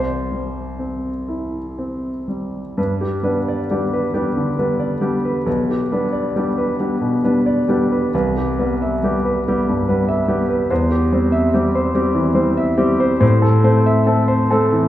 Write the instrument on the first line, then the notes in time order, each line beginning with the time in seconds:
grand piano
Already playing: C2 C5
0.32 G3
0.79 C4
1.28 E4
1.79 C4
2.28 G3
2.78 G2 B4
3.01 G4
3.23 G3 B3 D4 B4
3.48 D5
3.71 G3 B3 D4 G4
3.93 B4
4.14 G3 B3 D4 G4
4.37 D3
4.59 G3 B3 D4 B4
4.80 D5
5.01 G3 B3 D4 G4
5.25 B4
5.46 B1 B4
5.70 G4
5.92 G3 B3 D4 B4
6.13 D5
6.36 G3 B3 D4 G4
6.58 B4
6.80 G3 B3 D4 G4
7.01 B2
7.24 G3 B3 D4 B4
7.46 D5
7.68 G3 B3 D4 G4
7.92 B4
8.14 C2 B4
8.37 G4
8.59 G3 B3 B4
8.82 E5
9.03 G3 B3 G4
9.25 B4
9.48 G3 B3 G4
9.69 G2
9.89 G3 B3 B4
10.08 E5
10.28 G3 B3 G4
10.49 B4
10.70 E2 C5
10.91 G4
11.12 G3 C4 C5
11.32 E5
11.54 G3 C4 G4
11.75 C5
11.94 G3 C4 G4
12.15 E3
12.34 G3 C4 C5
12.57 E5
12.78 G3 C4 G4
13.00 C5
13.20 A2 C5
13.42 A4
13.64 A3 C4 C5
13.86 E5
14.07 A3 C4 A4
14.28 C5
14.51 A3 C4 A4
14.72 E3